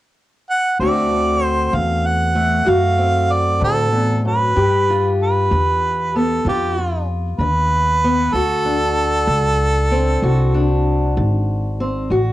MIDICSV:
0, 0, Header, 1, 4, 480
1, 0, Start_track
1, 0, Tempo, 628931
1, 611, Time_signature, 12, 3, 24, 8
1, 9408, End_track
2, 0, Start_track
2, 0, Title_t, "Harmonica"
2, 0, Program_c, 0, 22
2, 384, Note_on_c, 0, 78, 97
2, 600, Note_off_c, 0, 78, 0
2, 614, Note_on_c, 0, 74, 94
2, 1102, Note_off_c, 0, 74, 0
2, 1102, Note_on_c, 0, 72, 94
2, 1339, Note_on_c, 0, 77, 80
2, 1351, Note_off_c, 0, 72, 0
2, 1578, Note_on_c, 0, 78, 92
2, 1590, Note_off_c, 0, 77, 0
2, 2059, Note_on_c, 0, 77, 87
2, 2070, Note_off_c, 0, 78, 0
2, 2537, Note_on_c, 0, 74, 87
2, 2548, Note_off_c, 0, 77, 0
2, 2771, Note_off_c, 0, 74, 0
2, 2782, Note_on_c, 0, 69, 90
2, 3223, Note_off_c, 0, 69, 0
2, 3267, Note_on_c, 0, 71, 93
2, 3945, Note_off_c, 0, 71, 0
2, 3990, Note_on_c, 0, 71, 84
2, 4703, Note_on_c, 0, 69, 70
2, 4715, Note_off_c, 0, 71, 0
2, 4934, Note_off_c, 0, 69, 0
2, 4951, Note_on_c, 0, 67, 66
2, 5387, Note_off_c, 0, 67, 0
2, 5643, Note_on_c, 0, 71, 107
2, 6365, Note_on_c, 0, 69, 113
2, 6376, Note_off_c, 0, 71, 0
2, 8288, Note_off_c, 0, 69, 0
2, 9408, End_track
3, 0, Start_track
3, 0, Title_t, "Steel-string acoustic guitar"
3, 0, Program_c, 1, 25
3, 611, Note_on_c, 1, 38, 73
3, 615, Note_on_c, 1, 50, 53
3, 619, Note_on_c, 1, 57, 59
3, 626, Note_on_c, 1, 60, 55
3, 629, Note_on_c, 1, 66, 64
3, 839, Note_off_c, 1, 60, 0
3, 849, Note_on_c, 1, 60, 46
3, 1042, Note_off_c, 1, 38, 0
3, 1311, Note_off_c, 1, 50, 0
3, 1320, Note_on_c, 1, 50, 58
3, 1755, Note_off_c, 1, 50, 0
3, 1786, Note_off_c, 1, 57, 0
3, 1795, Note_on_c, 1, 57, 57
3, 2024, Note_off_c, 1, 66, 0
3, 2024, Note_on_c, 1, 38, 67
3, 2033, Note_on_c, 1, 66, 60
3, 2267, Note_off_c, 1, 60, 0
3, 2276, Note_on_c, 1, 60, 51
3, 2466, Note_off_c, 1, 38, 0
3, 2748, Note_on_c, 1, 38, 61
3, 2989, Note_off_c, 1, 38, 0
3, 2992, Note_on_c, 1, 40, 54
3, 3238, Note_off_c, 1, 40, 0
3, 3244, Note_on_c, 1, 42, 54
3, 3449, Note_off_c, 1, 66, 0
3, 3450, Note_off_c, 1, 57, 0
3, 3451, Note_off_c, 1, 60, 0
3, 3475, Note_off_c, 1, 42, 0
3, 3478, Note_on_c, 1, 43, 66
3, 3485, Note_on_c, 1, 67, 69
3, 3740, Note_on_c, 1, 65, 52
3, 3913, Note_off_c, 1, 43, 0
3, 4213, Note_on_c, 1, 50, 59
3, 4640, Note_off_c, 1, 50, 0
3, 4697, Note_on_c, 1, 59, 50
3, 4926, Note_off_c, 1, 65, 0
3, 4935, Note_on_c, 1, 43, 61
3, 4936, Note_on_c, 1, 65, 57
3, 5162, Note_off_c, 1, 65, 0
3, 5171, Note_on_c, 1, 65, 55
3, 5362, Note_off_c, 1, 43, 0
3, 5649, Note_on_c, 1, 50, 66
3, 6079, Note_off_c, 1, 50, 0
3, 6128, Note_off_c, 1, 59, 0
3, 6137, Note_on_c, 1, 59, 54
3, 6336, Note_off_c, 1, 67, 0
3, 6339, Note_off_c, 1, 65, 0
3, 6342, Note_off_c, 1, 59, 0
3, 6368, Note_on_c, 1, 38, 71
3, 6375, Note_on_c, 1, 66, 60
3, 6601, Note_on_c, 1, 62, 52
3, 6799, Note_off_c, 1, 38, 0
3, 7566, Note_on_c, 1, 60, 57
3, 7803, Note_on_c, 1, 38, 65
3, 7808, Note_off_c, 1, 66, 0
3, 7811, Note_on_c, 1, 66, 60
3, 8044, Note_off_c, 1, 62, 0
3, 8047, Note_on_c, 1, 62, 57
3, 8238, Note_off_c, 1, 38, 0
3, 8526, Note_on_c, 1, 50, 64
3, 8961, Note_off_c, 1, 50, 0
3, 8998, Note_off_c, 1, 60, 0
3, 9007, Note_on_c, 1, 60, 57
3, 9221, Note_off_c, 1, 60, 0
3, 9224, Note_off_c, 1, 66, 0
3, 9236, Note_on_c, 1, 38, 69
3, 9246, Note_on_c, 1, 66, 64
3, 9408, Note_off_c, 1, 38, 0
3, 9408, Note_off_c, 1, 62, 0
3, 9408, Note_off_c, 1, 66, 0
3, 9408, End_track
4, 0, Start_track
4, 0, Title_t, "Upright bass"
4, 0, Program_c, 2, 32
4, 606, Note_on_c, 2, 38, 71
4, 1305, Note_off_c, 2, 38, 0
4, 1321, Note_on_c, 2, 40, 86
4, 2022, Note_off_c, 2, 40, 0
4, 2042, Note_on_c, 2, 42, 71
4, 2741, Note_off_c, 2, 42, 0
4, 2760, Note_on_c, 2, 45, 83
4, 3460, Note_off_c, 2, 45, 0
4, 3484, Note_on_c, 2, 43, 70
4, 4182, Note_off_c, 2, 43, 0
4, 4205, Note_on_c, 2, 40, 81
4, 4903, Note_off_c, 2, 40, 0
4, 4921, Note_on_c, 2, 41, 74
4, 5621, Note_off_c, 2, 41, 0
4, 5636, Note_on_c, 2, 39, 73
4, 6339, Note_off_c, 2, 39, 0
4, 6361, Note_on_c, 2, 38, 69
4, 7062, Note_off_c, 2, 38, 0
4, 7078, Note_on_c, 2, 37, 90
4, 7782, Note_off_c, 2, 37, 0
4, 7803, Note_on_c, 2, 36, 75
4, 8505, Note_off_c, 2, 36, 0
4, 8524, Note_on_c, 2, 32, 79
4, 9227, Note_off_c, 2, 32, 0
4, 9239, Note_on_c, 2, 33, 72
4, 9408, Note_off_c, 2, 33, 0
4, 9408, End_track
0, 0, End_of_file